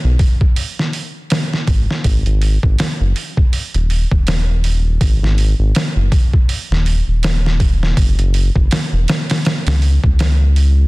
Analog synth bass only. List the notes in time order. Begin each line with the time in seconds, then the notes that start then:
0.04 B1
1.67 G#1
2.05 G#1
2.26 G#1
2.63 G#1
3.00 F#1
3.74 D#1
4.11 D#1
5.01 G#1
5.22 G#1
5.59 G#1
5.96 F#1
6.71 D#1
7.07 D#1
7.97 F#1
8.18 F#1
8.56 F#1
8.93 E1
9.67 C#2
10.04 C#2